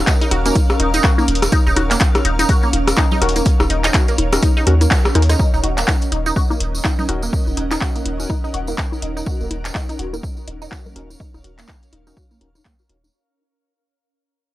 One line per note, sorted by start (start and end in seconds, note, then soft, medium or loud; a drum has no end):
0.00 5.38 C#4 medium
0.00 5.40 A#4 medium
0.00 5.39 C#5 medium
0.00 5.42 F5 medium
0.07 0.14 D#4 medium
0.07 kick loud
0.07 clap medium
0.07 closed hi-hat medium
0.07 tambourine medium
0.21 0.24 D#4 loud
0.21 closed hi-hat soft
0.21 tambourine soft
0.31 0.51 D#1 loud
0.31 0.36 F#4 medium
0.31 cross-stick soft
0.31 closed hi-hat medium
0.31 low bongo soft
0.45 0.49 A#3 medium
0.45 0.54 C#4 medium
0.45 0.55 D#4 medium
0.45 0.54 F#4 medium
0.45 0.54 A#4 medium
0.45 closed hi-hat soft
0.45 tambourine medium
0.55 kick loud
0.55 closed hi-hat medium
0.55 tambourine medium
0.55 low bongo medium
0.70 cross-stick medium
0.70 tambourine soft
0.80 0.99 D#1 medium
0.80 0.86 D#4 medium
0.80 closed hi-hat medium
0.94 0.97 D#4 loud
0.94 closed hi-hat soft
0.94 tambourine medium
0.94 low bongo soft
1.03 1.08 F#4 medium
1.03 kick loud
1.03 cross-stick soft
1.03 clap medium
1.03 tambourine medium
1.18 1.21 A#3 medium
1.18 tambourine soft
1.18 low bongo medium
1.28 1.47 D#1 loud
1.28 closed hi-hat medium
1.35 closed hi-hat medium
1.42 cross-stick medium
1.42 closed hi-hat soft
1.42 tambourine medium
1.52 1.59 D#4 medium
1.52 kick loud
1.52 closed hi-hat medium
1.52 tambourine medium
1.52 low bongo soft
1.67 1.74 D#1 loud
1.67 1.70 D#4 loud
1.67 tambourine soft
1.76 1.96 D#1 medium
1.76 1.81 F#4 medium
1.76 cross-stick soft
1.76 closed hi-hat medium
1.76 low bongo medium
1.91 1.94 A#3 medium
1.91 clap medium
1.91 closed hi-hat soft
1.91 tambourine medium
2.00 kick loud
2.00 clap medium
2.00 closed hi-hat medium
2.00 tambourine medium
2.15 cross-stick medium
2.15 closed hi-hat soft
2.15 tambourine soft
2.15 low bongo soft
2.25 2.44 D#1 loud
2.25 2.32 D#4 medium
2.25 closed hi-hat medium
2.39 2.42 D#4 loud
2.39 closed hi-hat soft
2.39 tambourine medium
2.39 low bongo medium
2.49 2.53 F#4 medium
2.49 kick loud
2.49 cross-stick soft
2.49 closed hi-hat medium
2.49 tambourine medium
2.63 2.66 A#3 medium
2.63 tambourine soft
2.73 2.93 D#1 medium
2.73 closed hi-hat medium
2.73 low bongo soft
2.87 cross-stick medium
2.87 closed hi-hat soft
2.87 tambourine medium
2.97 3.04 D#4 medium
2.97 kick loud
2.97 clap medium
2.97 low bongo medium
3.11 3.15 D#4 loud
3.11 tambourine soft
3.11 low conga medium
3.22 3.41 D#1 loud
3.22 3.34 C#4 medium
3.22 3.34 D#4 medium
3.22 3.34 F#4 medium
3.22 3.26 F#4 medium
3.22 3.34 A#4 loud
3.22 cross-stick soft
3.22 closed hi-hat medium
3.29 closed hi-hat medium
3.36 3.39 A#3 medium
3.36 closed hi-hat soft
3.36 tambourine medium
3.36 low bongo soft
3.45 kick loud
3.45 closed hi-hat medium
3.45 tambourine medium
3.60 3.68 D#1 loud
3.60 cross-stick medium
3.60 tambourine soft
3.60 low bongo medium
3.70 3.89 D#1 medium
3.70 3.77 D#4 medium
3.70 closed hi-hat medium
3.84 3.87 D#4 loud
3.84 clap medium
3.84 closed hi-hat soft
3.84 tambourine medium
3.94 3.99 F#4 medium
3.94 kick loud
3.94 cross-stick soft
3.94 clap medium
3.94 closed hi-hat medium
3.94 tambourine medium
3.94 low bongo soft
4.08 4.12 A#3 medium
4.08 closed hi-hat soft
4.08 tambourine soft
4.18 4.38 D#1 loud
4.18 closed hi-hat medium
4.18 low bongo medium
4.32 4.42 C#4 medium
4.32 4.42 D#4 medium
4.32 4.42 F#4 medium
4.32 4.42 A#4 medium
4.32 cross-stick medium
4.32 closed hi-hat soft
4.32 tambourine medium
4.43 4.49 D#4 medium
4.43 kick loud
4.43 closed hi-hat medium
4.43 tambourine medium
4.57 4.60 D#4 loud
4.57 tambourine soft
4.57 low bongo soft
4.67 4.86 D#2 loud
4.67 4.75 C#4 medium
4.67 4.75 D#4 medium
4.67 4.75 F#4 medium
4.67 4.71 F#4 medium
4.67 4.75 A#4 medium
4.67 cross-stick soft
4.67 closed hi-hat medium
4.81 4.84 A#3 medium
4.81 closed hi-hat soft
4.81 tambourine medium
4.81 low bongo medium
4.91 kick loud
4.91 clap medium
4.91 tambourine medium
5.05 cross-stick medium
5.05 tambourine soft
5.15 5.34 D#2 medium
5.15 5.23 C#4 medium
5.15 5.23 D#4 medium
5.15 5.22 D#4 medium
5.15 5.23 F#4 medium
5.15 5.23 A#4 medium
5.15 cross-stick medium
5.15 closed hi-hat medium
5.15 low bongo soft
5.22 closed hi-hat medium
5.29 5.33 D#4 loud
5.29 cross-stick medium
5.29 closed hi-hat soft
5.29 tambourine medium
5.39 13.14 C#4 medium
5.39 5.46 D#4 medium
5.39 kick loud
5.39 tambourine medium
5.54 5.61 D#1 loud
5.54 5.57 D#4 loud
5.54 13.14 A#4 medium
5.54 9.99 D#5 medium
5.54 tambourine soft
5.64 5.83 D#1 medium
5.64 5.68 F#4 medium
5.64 closed hi-hat medium
5.64 low bongo soft
5.77 5.81 A#3 medium
5.77 clap medium
5.77 closed hi-hat soft
5.77 tambourine medium
5.88 kick loud
5.88 clap medium
5.88 tambourine medium
5.88 low bongo medium
6.01 closed hi-hat soft
6.01 tambourine soft
6.12 6.31 D#1 loud
6.12 6.19 D#4 medium
6.12 closed hi-hat medium
6.26 6.29 D#4 loud
6.26 tambourine medium
6.26 low bongo soft
6.36 6.41 F#4 medium
6.36 kick loud
6.36 tambourine medium
6.48 6.54 A#3 medium
6.48 10.25 F#5 medium
6.48 tambourine soft
6.48 low bongo medium
6.60 6.80 D#1 medium
6.60 closed hi-hat medium
6.75 tambourine medium
6.85 6.91 D#4 medium
6.85 kick loud
6.85 clap medium
6.85 tambourine medium
6.85 low bongo soft
6.99 7.02 D#4 loud
6.99 tambourine soft
6.99 low conga medium
7.09 7.28 D#1 medium
7.09 7.22 C#4 medium
7.09 7.22 D#4 medium
7.09 7.22 F#4 medium
7.09 7.13 F#4 medium
7.09 7.22 A#4 medium
7.09 closed hi-hat medium
7.09 low bongo medium
7.22 7.26 A#3 medium
7.22 tambourine medium
7.33 kick loud
7.33 tambourine medium
7.47 7.55 D#1 loud
7.47 tambourine soft
7.47 low bongo soft
7.57 7.76 D#1 medium
7.57 7.64 D#4 medium
7.57 closed hi-hat medium
7.71 7.75 D#4 loud
7.71 clap medium
7.71 closed hi-hat soft
7.71 tambourine medium
7.71 low bongo medium
7.81 7.86 F#4 medium
7.81 kick loud
7.81 clap medium
7.81 tambourine medium
7.95 7.99 A#3 medium
7.95 closed hi-hat soft
7.95 tambourine soft
8.05 8.25 D#1 loud
8.05 closed hi-hat medium
8.05 low bongo soft
8.20 8.29 C#4 medium
8.20 8.29 D#4 medium
8.20 8.29 F#4 medium
8.20 8.29 A#4 medium
8.20 tambourine medium
8.30 8.36 D#4 medium
8.30 kick loud
8.30 tambourine medium
8.30 low bongo medium
8.44 8.47 D#4 loud
8.44 tambourine soft
8.54 8.73 D#1 medium
8.54 8.58 F#4 medium
8.54 closed hi-hat medium
8.67 8.71 A#3 medium
8.67 tambourine medium
8.67 low bongo soft
8.78 kick loud
8.78 clap medium
8.78 tambourine medium
8.92 tambourine soft
8.92 low bongo medium
9.02 9.22 D#1 medium
9.02 9.09 D#4 medium
9.02 closed hi-hat medium
9.17 9.20 D#4 loud
9.17 tambourine medium
9.26 9.31 F#4 medium
9.26 kick loud
9.26 tambourine medium
9.26 low bongo soft
9.40 9.48 D#1 loud
9.40 9.44 A#3 medium
9.40 tambourine soft
9.51 9.70 D#1 medium
9.51 closed hi-hat medium
9.51 low bongo medium
9.65 clap medium
9.65 closed hi-hat soft
9.65 tambourine medium
9.75 9.82 D#4 medium
9.75 kick loud
9.75 clap medium
9.75 tambourine medium
9.86 9.92 D#4 loud
9.86 13.14 C#5 medium
9.86 closed hi-hat soft
9.86 tambourine soft
9.86 low bongo soft
9.99 10.18 D#1 medium
9.99 10.03 F#4 medium
9.99 closed hi-hat medium
10.12 10.16 A#3 medium
10.12 13.14 F5 medium
10.12 tambourine medium
10.12 low bongo medium
10.23 kick loud
10.23 tambourine medium
10.37 tambourine soft
10.47 10.67 D#1 medium
10.47 10.54 D#4 medium
10.47 closed hi-hat medium
10.47 low bongo soft
10.62 10.65 D#4 loud
10.62 tambourine medium
10.72 10.76 F#4 medium
10.72 kick loud
10.72 clap medium
10.72 tambourine medium
10.72 low bongo medium
10.86 10.89 A#3 medium
10.86 tambourine soft
10.86 low conga medium
10.96 11.15 D#1 medium
10.96 11.09 C#4 medium
10.96 11.09 D#4 medium
10.96 11.09 F#4 medium
10.96 11.09 A#4 loud
10.96 closed hi-hat medium
11.10 tambourine medium
11.10 low bongo soft
11.20 11.27 D#4 medium
11.20 kick loud
11.34 11.42 D#1 loud
11.34 11.37 D#4 loud
11.34 tambourine soft
11.34 low bongo medium
11.44 11.64 D#1 medium
11.44 11.49 F#4 medium
11.44 closed hi-hat medium
11.59 11.62 A#3 medium
11.59 clap medium
11.59 closed hi-hat soft
11.59 tambourine medium
11.68 kick loud
11.68 clap medium
11.68 tambourine medium
11.68 low bongo soft
11.83 closed hi-hat soft
11.83 tambourine soft
11.93 12.12 D#1 loud
11.93 11.99 D#4 medium
11.93 closed hi-hat medium
11.93 low bongo medium
12.07 12.16 C#4 medium
12.07 12.16 D#4 medium
12.07 12.10 D#4 loud
12.07 12.16 F#4 medium
12.07 12.16 A#4 medium
12.07 tambourine medium
12.17 12.21 F#4 medium
12.17 kick loud
12.17 tambourine medium
12.31 12.34 A#3 medium
12.31 tambourine soft
12.31 low bongo soft
12.41 12.60 D#1 medium
12.41 12.49 C#4 medium
12.41 12.49 D#4 medium
12.41 12.49 F#4 medium
12.41 12.49 A#4 medium
12.41 closed hi-hat medium
12.55 12.57 D#4 medium
12.55 tambourine medium
12.55 low bongo medium
12.65 12.70 A#3 loud
12.65 kick loud
12.65 clap medium
12.65 tambourine medium
12.79 12.82 F#4 medium
12.79 tambourine soft
12.89 13.09 D#1 medium
12.89 12.97 C#4 medium
12.89 12.97 D#4 medium
12.89 12.97 F#4 medium
12.89 12.97 A#4 medium
12.89 closed hi-hat medium
12.89 low bongo soft
13.04 13.08 D#4 medium
13.04 tambourine medium